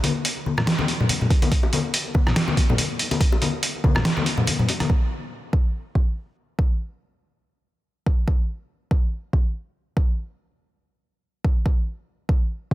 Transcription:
0.04 closed hi-hat medium
0.04 high conga medium
0.25 closed hi-hat medium
0.46 high conga medium
0.57 cross-stick medium
0.57 low conga medium
0.67 snare loud
0.67 closed hi-hat medium
0.79 high conga medium
0.88 closed hi-hat soft
0.88 high bongo soft
1.00 low conga medium
1.09 closed hi-hat medium
1.09 high conga medium
1.21 low conga medium
1.30 kick loud
1.30 closed hi-hat soft
1.30 high bongo soft
1.42 closed hi-hat soft
1.42 high conga medium
1.52 kick loud
1.52 closed hi-hat medium
1.63 high bongo medium
1.73 closed hi-hat medium
1.73 high conga medium
1.94 closed hi-hat medium
2.14 kick loud
2.14 high conga medium
2.27 cross-stick medium
2.27 low conga medium
2.36 snare loud
2.36 closed hi-hat medium
2.48 high conga medium
2.57 kick medium
2.57 closed hi-hat soft
2.57 high bongo soft
2.70 low conga loud
2.78 closed hi-hat medium
2.78 high conga medium
2.99 closed hi-hat medium
3.11 closed hi-hat soft
3.11 high bongo medium
3.11 high conga medium
3.21 kick loud
3.21 closed hi-hat medium
3.32 high bongo medium
3.42 closed hi-hat medium
3.42 high conga medium
3.63 closed hi-hat medium
3.84 kick medium
3.84 high conga medium
3.95 cross-stick medium
3.95 low conga medium
4.05 snare loud
4.05 closed hi-hat medium
4.17 high conga medium
4.26 closed hi-hat medium
4.26 high bongo soft
4.37 low conga loud
4.47 closed hi-hat medium
4.47 high conga medium
4.59 low conga medium
4.69 closed hi-hat medium
4.69 high bongo medium
4.80 cross-stick medium
4.80 closed hi-hat soft
4.80 high conga medium
4.90 kick loud
5.53 kick loud
5.95 kick medium
6.59 kick loud
8.06 kick loud
8.28 kick loud
8.91 kick loud
9.33 kick medium
9.97 kick loud
11.44 kick loud
11.66 kick loud
12.29 kick loud

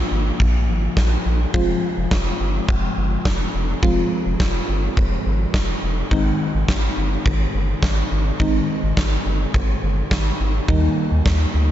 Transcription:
0.00 1.50 F3 medium
0.00 1.50 A#3 medium
0.00 1.50 D4 medium
0.00 1.50 F4 medium
0.11 0.31 G#1 medium
0.40 0.70 A#1 loud
0.40 kick loud
0.68 0.88 G#1 medium
0.97 1.17 A#1 loud
0.97 kick loud
0.97 snare loud
1.26 1.46 A#1 medium
1.54 1.74 F1 loud
1.54 3.79 F3 medium
1.54 3.79 G#3 medium
1.54 3.79 C4 medium
1.54 3.79 F4 medium
1.54 kick loud
1.97 2.07 F1 medium
2.11 2.31 F1 loud
2.11 kick loud
2.11 snare loud
2.40 2.60 G1 medium
2.69 2.88 F1 loud
2.69 kick loud
2.97 3.17 G1 medium
3.25 3.45 F1 loud
3.25 kick loud
3.25 snare loud
3.54 3.74 F1 loud
3.83 4.03 F1 loud
3.83 6.07 F3 medium
3.83 6.07 G#3 medium
3.83 6.07 C4 medium
3.83 6.07 F4 medium
3.83 kick loud
4.26 4.36 F1 medium
4.40 4.60 F1 loud
4.40 kick loud
4.40 snare loud
4.68 4.88 G1 medium
4.97 5.17 F1 loud
4.97 kick loud
5.26 5.46 G#1 medium
5.54 5.74 F1 medium
5.54 kick loud
5.54 snare loud
5.83 6.03 F1 medium
6.11 6.31 G#1 loud
6.11 8.36 D#3 medium
6.11 8.36 G#3 medium
6.11 8.36 C4 medium
6.11 8.36 D#4 medium
6.11 kick loud
6.54 6.64 G#1 medium
6.69 6.89 G#1 medium
6.69 kick loud
6.69 snare loud
6.97 7.17 G1 medium
7.26 7.46 G#1 loud
7.26 kick loud
7.54 7.74 G1 medium
7.83 8.03 G#1 loud
7.83 kick loud
7.83 snare loud
8.11 8.31 G#1 loud
8.40 8.60 G#1 loud
8.40 10.64 D#3 medium
8.40 10.64 G#3 medium
8.40 10.64 C4 medium
8.40 10.64 D#4 medium
8.40 kick loud
8.83 8.93 G#1 medium
8.97 9.17 G#1 loud
8.97 kick loud
8.97 snare loud
9.26 9.46 G1 loud
9.54 9.74 G#1 loud
9.54 kick loud
9.83 10.03 G1 medium
10.11 10.31 G#1 medium
10.11 kick loud
10.11 snare loud
10.40 10.60 G#1 medium
10.68 10.88 D#2 loud
10.68 11.71 D#3 medium
10.68 11.71 G3 medium
10.68 11.71 A#3 medium
10.68 11.71 D#4 medium
10.68 kick loud
11.11 11.21 D#2 medium
11.26 11.46 D#2 loud
11.26 kick loud
11.26 snare loud
11.54 11.71 D2 loud

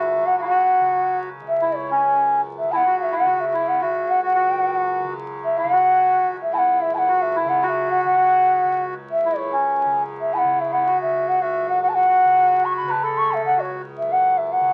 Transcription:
0.00 1.40 C#2 medium
0.00 2.02 F#2 medium
0.00 0.19 C#3 soft
0.00 0.35 F#4 medium
0.00 0.28 E5 medium
0.19 0.80 C#3 soft
0.26 0.39 F#5 medium
0.37 0.41 F#4 medium
0.37 0.50 F5 medium
0.41 0.45 E4 soft
0.41 0.48 F#4 medium
0.49 1.29 F#4 medium
0.49 1.17 F#5 medium
0.80 2.62 C#3 soft
1.41 3.82 C#2 medium
1.48 1.78 E5 medium
1.61 1.90 E4 medium
1.76 2.31 C#5 medium
1.91 2.41 C#4 medium
2.02 4.44 F#2 soft
2.58 3.24 C#3 medium
2.58 2.73 E5 medium
2.72 2.85 E4 medium
2.72 2.77 A5 medium
2.76 2.98 F#5 medium
2.86 3.14 F#4 medium
2.99 3.15 E5 medium
3.12 3.26 E4 medium
3.12 3.33 F#5 medium
3.24 5.03 C#3 medium
3.24 3.45 F#4 medium
3.33 3.42 F#5 medium
3.40 3.70 E5 medium
3.46 3.53 F#4 soft
3.53 3.82 E4 medium
3.68 3.84 F#5 medium
3.81 6.22 C#2 medium
3.81 4.21 F#4 medium
3.81 4.11 E5 medium
4.09 4.23 F#5 medium
4.22 4.33 F#4 medium
4.22 5.01 F#5 medium
4.35 5.13 F#4 medium
4.44 6.84 F#2 medium
5.03 5.63 C#3 medium
5.45 5.60 E5 medium
5.58 5.72 E4 medium
5.58 5.73 F5 loud
5.63 7.44 C#3 medium
5.72 6.36 F#4 medium
5.72 6.27 F#5 loud
6.23 8.63 C#2 medium
6.42 6.55 E5 medium
6.53 6.93 E4 medium
6.53 6.59 A5 medium
6.58 6.82 F#5 medium
6.81 9.22 F#2 soft
6.81 6.96 E5 medium
6.94 7.09 E4 medium
6.94 7.23 F#5 medium
6.94 6.99 A5 medium
7.08 7.36 F#4 medium
7.22 7.51 E5 medium
7.35 7.64 E4 medium
7.44 8.04 C#3 medium
7.49 7.64 F#5 medium
7.62 8.15 F#4 medium
7.62 7.70 F#5 medium
7.69 7.92 E5 medium
7.90 8.04 F#5 medium
8.04 9.84 C#3 medium
8.04 8.81 F#5 medium
8.17 8.94 F#4 medium
8.63 11.02 C#2 medium
9.12 9.40 E5 medium
9.23 11.62 F#2 soft
9.23 9.53 E4 medium
9.38 9.93 C#5 medium
9.52 10.03 C#4 medium
9.84 10.43 C#3 medium
10.21 10.35 E5 medium
10.34 10.72 E4 medium
10.34 10.62 F#5 medium
10.34 10.39 A5 medium
10.43 12.23 C#3 medium
10.60 10.74 E5 medium
10.73 10.88 E4 medium
10.73 11.01 F#5 medium
10.87 11.39 F#4 medium
11.02 13.42 C#2 medium
11.02 11.30 E5 medium
11.28 11.44 F#5 medium
11.41 11.80 F#4 medium
11.41 11.70 E5 medium
11.62 14.01 F#2 medium
11.69 11.82 F#5 medium
11.82 11.93 F#4 soft
11.82 11.90 F#5 medium
11.89 11.96 A5 medium
11.94 12.06 F#4 medium
11.94 12.67 F#5 loud
12.08 12.92 F#4 medium
12.23 12.83 C#3 medium
12.65 12.76 C#6 medium
12.76 12.92 B5 medium
12.83 14.60 C#3 medium
12.87 13.03 B4 medium
12.87 13.05 A5 medium
13.03 13.58 A4 medium
13.03 13.19 B5 medium
13.18 13.34 C#6 medium
13.33 13.45 E5 medium
13.42 14.73 C#2 medium
13.42 13.62 F#5 medium
13.57 13.82 F#4 soft
13.57 13.72 C#5 medium
13.98 14.73 F#2 medium
13.98 14.14 E5 medium
14.12 14.39 F#5 loud
14.38 14.54 E5 medium
14.52 14.73 F#5 medium
14.60 14.73 C#3 medium

